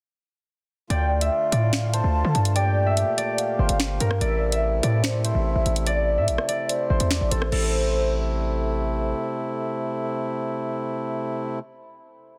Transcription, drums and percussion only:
0.90 closed hi-hat
1.21 closed hi-hat
1.52 closed hi-hat
1.73 finger snap, snare
1.94 closed hi-hat
2.35 closed hi-hat
2.45 closed hi-hat
2.56 closed hi-hat
2.97 closed hi-hat
3.18 closed hi-hat
3.38 closed hi-hat
3.69 closed hi-hat
3.80 finger snap, snare
4.00 closed hi-hat
4.11 cross-stick
4.21 closed hi-hat
4.52 closed hi-hat
4.83 closed hi-hat
5.04 finger snap, snare
5.25 closed hi-hat
5.66 closed hi-hat
5.76 closed hi-hat
5.87 closed hi-hat
6.28 closed hi-hat
6.38 cross-stick
6.49 closed hi-hat
6.69 closed hi-hat
7.00 closed hi-hat
7.11 finger snap, snare
7.31 closed hi-hat
7.42 cross-stick
7.52 crash

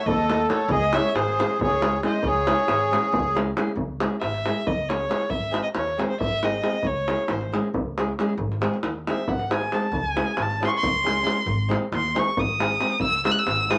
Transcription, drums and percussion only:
0.08 davul low
0.19 davul high
0.30 davul high
0.50 davul high
0.69 davul low
0.93 davul high
1.16 davul high
1.28 davul high
1.40 davul high
1.61 davul low
1.72 davul high
1.82 davul high
2.03 davul high
2.23 davul low
2.47 davul high
2.58 davul high
2.68 davul high
2.81 davul high
2.93 davul high
3.03 davul high
3.14 davul low
3.37 davul high
3.57 davul high
3.67 davul high
3.77 davul low
4.00 davul high
4.22 davul high
4.34 davul high
4.46 davul high
4.67 davul low
4.90 davul high
5.11 davul high
5.21 davul high
5.30 davul low
5.54 davul high
5.75 davul high
5.87 davul high
6.00 davul high
6.21 davul low
6.43 davul high
6.64 davul high
6.73 davul high
6.83 davul low
7.08 davul high
7.28 davul high
7.41 davul high
7.54 davul high
7.74 davul low
7.98 davul high
8.19 davul high
8.29 davul high
8.39 davul low
8.52 davul high
8.62 davul high
8.74 davul high
8.83 davul high
9.07 davul high
9.18 davul high
9.28 davul low
9.39 davul high
9.51 davul high
9.61 davul high
9.72 davul high
9.82 davul high
9.93 davul low
10.17 davul high
10.37 davul high
10.50 davul high
10.63 davul high
10.83 davul low
11.07 davul high
11.27 davul high
11.37 davul high
11.47 davul low
11.71 davul high
11.92 davul high
12.04 davul high
12.16 davul high
12.37 davul low
12.60 davul high
12.81 davul high
12.90 davul high
13.00 davul low
13.25 davul high
13.47 davul high
13.59 davul high
13.71 davul high

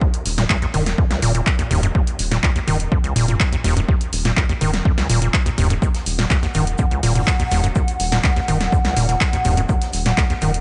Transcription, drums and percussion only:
0.01 kick
0.14 closed hi-hat
0.26 open hi-hat
0.38 snare, closed hi-hat
0.50 kick, clap
0.62 closed hi-hat
0.74 mid tom, open hi-hat
0.86 snare, closed hi-hat
0.98 kick
1.11 snare, closed hi-hat
1.22 open hi-hat
1.35 closed hi-hat
1.47 kick, clap
1.59 closed hi-hat
1.71 mid tom, open hi-hat
1.83 closed hi-hat
1.95 kick
2.07 closed hi-hat
2.19 open hi-hat
2.32 snare, closed hi-hat
2.43 kick, clap
2.56 closed hi-hat
2.68 mid tom, open hi-hat
2.80 closed hi-hat
2.92 kick
3.04 closed hi-hat
3.16 open hi-hat
3.28 closed hi-hat, mid tom
3.40 kick, clap
3.53 closed hi-hat
3.64 snare, open hi-hat
3.77 closed hi-hat
3.89 kick
4.01 closed hi-hat
4.13 open hi-hat
4.25 snare, closed hi-hat
4.37 kick, clap
4.49 closed hi-hat
4.61 mid tom, open hi-hat
4.74 snare, closed hi-hat
4.85 kick
4.98 snare, closed hi-hat
5.10 open hi-hat
5.22 closed hi-hat
5.34 kick, clap
5.46 closed hi-hat
5.58 mid tom, open hi-hat
5.70 closed hi-hat
5.82 kick, shaker
5.95 snare, closed hi-hat
6.06 open hi-hat, shaker
6.19 snare, closed hi-hat
6.30 kick, snare, clap, shaker
6.43 snare, closed hi-hat
6.54 mid tom, open hi-hat, shaker
6.67 closed hi-hat
6.78 kick, shaker
6.91 closed hi-hat
7.03 snare, open hi-hat
7.15 closed hi-hat, mid tom
7.27 kick, snare, clap, shaker
7.40 closed hi-hat
7.51 snare, open hi-hat, shaker
7.63 closed hi-hat
7.75 kick, shaker
7.88 closed hi-hat
8.00 open hi-hat, shaker
8.12 snare, closed hi-hat
8.24 kick, snare, clap, shaker
8.36 snare, closed hi-hat
8.48 mid tom, open hi-hat, shaker
8.61 snare, closed hi-hat
8.72 kick, shaker
8.84 snare, closed hi-hat
8.97 open hi-hat, shaker
9.09 snare, closed hi-hat
9.21 kick, snare, clap, shaker
9.33 closed hi-hat
9.45 mid tom, open hi-hat, shaker
9.57 closed hi-hat
9.69 kick, shaker
9.82 snare, closed hi-hat
9.93 open hi-hat, shaker
10.06 snare, closed hi-hat
10.17 kick, snare, clap, shaker
10.30 snare, closed hi-hat
10.41 mid tom, open hi-hat, shaker
10.54 closed hi-hat

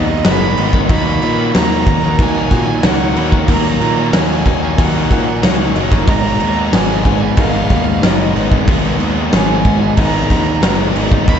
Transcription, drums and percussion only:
0.25 snare, crash
0.57 crash
0.73 kick
0.89 kick, crash
1.22 crash
1.55 snare, crash
1.87 kick, crash
2.19 kick, crash
2.51 kick, snare, crash
2.83 snare, crash
3.16 crash
3.32 kick
3.48 kick, crash
3.81 crash
4.13 snare, crash
4.46 kick, crash
4.78 kick, crash
5.11 kick, crash
5.43 snare, crash
5.76 crash
5.92 kick, snare
6.07 kick, crash
6.40 crash
6.73 snare, crash
7.05 kick, crash
7.37 kick, crash
7.70 kick, snare, crash
8.03 snare, crash
8.36 crash
8.52 kick
8.68 kick, crash
9.00 crash
9.33 snare, crash
9.65 kick, crash
9.97 kick, crash
10.30 kick, snare, crash
10.63 snare, crash
10.96 crash
11.12 kick
11.28 kick, crash

